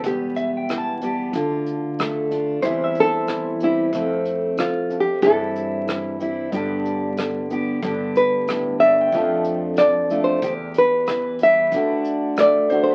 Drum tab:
HH |xxxxxxxx|xxxxxxxx|xxxxxxxx|xxxxxxxx|
SD |--r---r-|--r---r-|--r---r-|--r---r-|
BD |o---o---|o---o---|o---o---|o---o---|

HH |xxxxxxxx|
SD |--r---r-|
BD |o---o---|